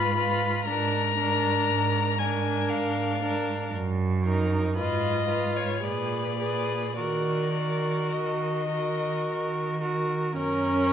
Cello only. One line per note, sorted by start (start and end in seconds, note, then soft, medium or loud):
0.00 0.55 G#2 medium
0.67 1.57 G#2 medium
1.69 2.58 G#2 medium
2.71 3.60 G#2 soft
3.73 4.64 F#2 medium
4.77 5.70 G#2 soft
5.84 6.84 A#2 soft
6.98 7.99 D#3 soft
8.12 9.11 D#3 soft
9.25 10.23 D#3 soft
10.35 10.93 F#2 soft